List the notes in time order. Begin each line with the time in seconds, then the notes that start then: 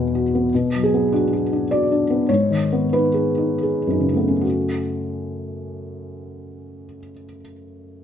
Already playing: E2 B2 B3 F#4 G#4
0.15 F#4
0.35 B3
0.54 B2
0.75 F#3
0.83 G#4
0.94 B3
1.12 D4 F#4
1.33 F#4
1.53 D4
1.71 F#4 D5
1.92 D4
2.10 B3
2.29 G#2 C#5
2.50 D#3
2.72 B3
2.93 D#4 B4
3.14 G#4
3.37 D#4
3.63 G#4
3.87 F#2 D#4
4.00 C#3
4.14 A3 B3
4.28 C#4
4.41 F#4